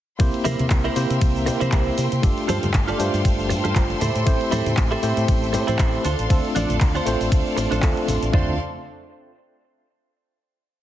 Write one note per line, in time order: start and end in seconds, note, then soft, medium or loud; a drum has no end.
0.19 0.29 C2 loud
0.19 0.93 A#3 medium
0.19 0.93 C4 medium
0.19 0.94 E4 medium
0.19 0.94 G4 medium
0.19 2.21 A#4 medium
0.19 0.94 C5 loud
0.19 2.21 E5 medium
0.19 6.01 G5 medium
0.19 8.29 C6 medium
0.19 kick loud
0.19 closed hi-hat medium
0.19 ride medium
0.19 cabasa soft
0.34 closed hi-hat soft
0.45 0.54 C3 medium
0.45 0.65 E4 loud
0.45 0.65 G4 loud
0.45 0.65 A#4 loud
0.45 0.66 C5 loud
0.45 open hi-hat loud
0.45 high conga medium
0.45 cabasa medium
0.59 0.66 C3 medium
0.59 closed hi-hat medium
0.59 low conga medium
0.59 cabasa soft
0.70 0.87 C2 loud
0.70 kick loud
0.70 clap loud
0.70 closed hi-hat medium
0.70 ride medium
0.70 cabasa soft
0.84 1.16 E4 medium
0.84 1.16 G4 medium
0.84 1.16 A#4 medium
0.84 1.17 C5 loud
0.84 closed hi-hat soft
0.96 1.05 C3 medium
0.96 1.44 A#3 medium
0.96 1.44 C4 medium
0.96 1.44 E4 medium
0.96 1.44 G4 medium
0.96 1.45 C5 medium
0.96 open hi-hat loud
0.96 cabasa medium
1.10 1.17 C3 medium
1.10 closed hi-hat medium
1.10 cabasa soft
1.21 1.49 C2 medium
1.21 kick loud
1.21 closed hi-hat medium
1.21 ride medium
1.21 cabasa soft
1.36 cabasa soft
1.46 1.56 C3 medium
1.46 2.20 A#3 medium
1.46 2.20 C4 medium
1.46 2.21 E4 medium
1.46 2.21 G4 medium
1.46 2.21 C5 medium
1.46 muted clean electric guitar stroke loud
1.46 open hi-hat loud
1.46 cabasa medium
1.60 1.68 C3 medium
1.60 2.05 E4 medium
1.60 2.05 G4 medium
1.60 2.05 A#4 medium
1.60 2.05 C5 loud
1.60 closed hi-hat medium
1.60 high conga medium
1.60 cabasa soft
1.72 1.89 C2 medium
1.72 kick loud
1.72 clap loud
1.72 closed hi-hat medium
1.72 ride medium
1.72 cabasa soft
1.98 2.07 C3 loud
1.98 open hi-hat loud
1.98 cabasa medium
2.12 2.19 C3 medium
2.12 closed hi-hat medium
2.12 cabasa soft
2.22 2.32 G1 loud
2.22 2.96 A3 medium
2.22 2.97 D4 medium
2.22 2.97 F4 medium
2.22 2.97 G4 medium
2.22 6.01 A4 medium
2.22 2.97 A4 loud
2.22 4.00 F5 medium
2.22 kick loud
2.22 closed hi-hat medium
2.22 ride medium
2.22 cabasa soft
2.38 closed hi-hat soft
2.48 2.57 G2 medium
2.48 2.68 F4 loud
2.48 2.69 G4 loud
2.48 2.69 A4 loud
2.48 2.69 C5 loud
2.48 open hi-hat loud
2.48 high conga loud
2.48 cabasa medium
2.63 2.70 G2 medium
2.63 closed hi-hat medium
2.63 low conga medium
2.63 cabasa soft
2.74 2.91 G1 loud
2.74 kick loud
2.74 clap loud
2.74 closed hi-hat medium
2.74 ride medium
2.74 cabasa soft
2.87 3.19 F4 medium
2.87 3.19 G4 medium
2.87 3.20 A4 medium
2.87 3.20 D5 loud
2.87 closed hi-hat soft
2.87 cabasa soft
2.98 3.08 G2 medium
2.98 3.99 A3 medium
2.98 4.00 D4 medium
2.98 4.00 F4 medium
2.98 4.00 G4 medium
2.98 4.00 C5 medium
2.98 open hi-hat loud
2.98 cabasa medium
3.14 3.21 G2 medium
3.14 open hi-hat medium
3.14 cabasa soft
3.25 3.52 G1 medium
3.25 kick loud
3.25 closed hi-hat medium
3.25 ride medium
3.25 cabasa soft
3.39 cabasa soft
3.49 3.59 G2 medium
3.49 muted clean electric guitar stroke loud
3.49 open hi-hat loud
3.49 cabasa medium
3.64 3.72 G2 medium
3.64 4.00 F4 medium
3.64 4.00 G4 medium
3.64 4.00 A4 medium
3.64 4.01 C5 medium
3.64 closed hi-hat medium
3.64 high conga medium
3.64 cabasa soft
3.76 3.93 G1 loud
3.76 kick loud
3.76 clap loud
3.76 closed hi-hat medium
3.76 ride medium
3.76 cabasa soft
3.90 closed hi-hat soft
4.00 4.10 A2 loud
4.00 4.43 E4 medium
4.00 4.43 G4 medium
4.00 4.43 A4 medium
4.00 4.43 C5 loud
4.00 6.03 E5 medium
4.00 open hi-hat loud
4.00 low conga medium
4.00 cabasa medium
4.15 4.22 A2 medium
4.15 closed hi-hat medium
4.15 cabasa soft
4.26 4.35 A1 loud
4.26 5.00 A3 medium
4.26 5.00 C4 medium
4.26 5.00 E4 medium
4.26 5.01 G4 medium
4.26 5.01 C5 loud
4.26 kick loud
4.26 closed hi-hat medium
4.26 ride medium
4.26 cabasa soft
4.41 closed hi-hat soft
4.51 4.61 A2 medium
4.51 4.72 E4 loud
4.51 4.72 G4 loud
4.51 4.72 A4 loud
4.51 4.72 C5 loud
4.51 open hi-hat loud
4.51 high conga loud
4.51 cabasa medium
4.66 4.73 A2 medium
4.66 closed hi-hat medium
4.66 low conga medium
4.66 cabasa soft
4.77 4.94 A1 loud
4.77 kick loud
4.77 clap loud
4.77 closed hi-hat medium
4.77 ride medium
4.77 cabasa soft
4.91 5.22 E4 medium
4.91 5.23 G4 medium
4.91 5.23 A4 medium
4.91 5.23 C5 loud
4.91 closed hi-hat soft
5.02 5.12 A2 medium
5.02 5.51 A3 medium
5.02 5.51 C4 medium
5.02 5.51 E4 medium
5.02 5.51 G4 medium
5.02 5.51 C5 loud
5.02 open hi-hat loud
5.02 cabasa medium
5.17 5.24 A2 medium
5.17 closed hi-hat medium
5.17 cabasa soft
5.28 5.55 A1 medium
5.28 kick loud
5.28 closed hi-hat medium
5.28 ride medium
5.28 cabasa soft
5.43 cabasa soft
5.53 5.62 A2 medium
5.53 6.03 A3 medium
5.53 6.03 C4 medium
5.53 6.03 E4 medium
5.53 6.04 G4 medium
5.53 6.04 C5 medium
5.53 muted clean electric guitar stroke loud
5.53 open hi-hat loud
5.53 cabasa medium
5.67 5.75 A2 loud
5.67 6.04 E4 medium
5.67 6.03 G4 medium
5.67 6.04 A4 medium
5.67 6.04 C5 loud
5.67 closed hi-hat medium
5.67 high conga medium
5.67 cabasa soft
5.79 5.96 A1 loud
5.79 kick loud
5.79 clap loud
5.79 closed hi-hat medium
5.79 ride medium
5.79 cabasa soft
6.04 6.13 D2 loud
6.04 6.46 D4 medium
6.04 6.47 F4 medium
6.04 8.31 A4 medium
6.04 6.47 A4 medium
6.04 6.47 C5 loud
6.04 8.31 D5 medium
6.04 8.31 F5 medium
6.04 open hi-hat loud
6.04 cabasa medium
6.19 6.26 A1 medium
6.19 closed hi-hat soft
6.19 cabasa soft
6.29 6.39 D2 loud
6.29 7.03 A3 medium
6.29 7.04 C4 medium
6.29 7.04 D4 medium
6.29 7.04 F4 medium
6.29 7.04 A4 loud
6.29 kick loud
6.29 closed hi-hat medium
6.29 ride medium
6.29 cabasa soft
6.45 closed hi-hat soft
6.55 6.64 A1 medium
6.55 6.75 D4 loud
6.55 6.75 F4 loud
6.55 6.76 A4 loud
6.55 6.76 D5 loud
6.55 open hi-hat loud
6.55 high conga loud
6.55 cabasa medium
6.69 6.77 A1 medium
6.69 closed hi-hat medium
6.69 low conga medium
6.69 cabasa soft
6.81 6.98 D2 loud
6.81 kick loud
6.81 clap loud
6.81 closed hi-hat medium
6.81 ride medium
6.81 cabasa soft
6.95 7.26 D4 medium
6.95 7.26 F4 medium
6.95 7.26 A4 medium
6.95 7.27 C5 loud
6.95 closed hi-hat soft
6.95 cabasa soft
7.06 7.15 A1 medium
7.06 7.80 A3 medium
7.06 7.80 C4 medium
7.06 7.81 D4 medium
7.06 7.81 F4 medium
7.06 7.81 C5 loud
7.06 open hi-hat loud
7.06 cabasa medium
7.20 7.27 A1 medium
7.20 open hi-hat medium
7.20 cabasa soft
7.32 7.41 D2 medium
7.32 kick loud
7.32 closed hi-hat medium
7.32 ride medium
7.32 cabasa soft
7.47 cabasa soft
7.57 7.66 A1 medium
7.57 muted clean electric guitar stroke loud
7.57 open hi-hat loud
7.57 cabasa medium
7.71 7.78 A1 medium
7.71 8.15 D4 medium
7.71 8.15 F4 medium
7.71 8.15 A4 medium
7.71 8.16 C5 loud
7.71 closed hi-hat medium
7.71 high conga medium
7.71 cabasa soft
7.82 7.91 D2 medium
7.82 8.31 A3 medium
7.82 8.31 C4 medium
7.82 8.31 D4 medium
7.82 8.31 F4 medium
7.82 8.31 A4 medium
7.82 kick loud
7.82 clap loud
7.82 closed hi-hat medium
7.82 ride medium
7.82 cabasa soft
7.97 closed hi-hat soft
8.08 8.17 A1 loud
8.08 open hi-hat loud
8.08 low conga medium
8.08 cabasa medium
8.22 8.29 A1 loud
8.22 closed hi-hat medium
8.22 cabasa soft
8.32 8.57 D2 loud
8.32 8.52 A3 medium
8.32 8.53 C4 medium
8.32 8.57 D4 medium
8.32 8.53 D4 medium
8.32 8.57 F4 medium
8.32 8.53 F4 medium
8.32 8.57 A4 medium
8.32 8.57 C5 medium
8.32 8.54 C5 medium
8.32 8.57 D5 medium
8.32 8.57 F5 medium
8.32 8.57 C6 medium
8.32 kick loud
8.32 floor tom loud